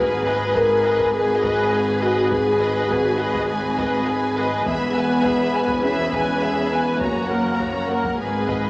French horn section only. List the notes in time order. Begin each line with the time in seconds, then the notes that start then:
Already playing: B4
0.55 A#4
1.13 G#4
2.02 F#4
2.32 G#4
2.89 F#4
3.19 G#4
4.38 G#3
4.66 B3
5.83 C#4
6.72 B3
7.01 A#3
8.20 G#3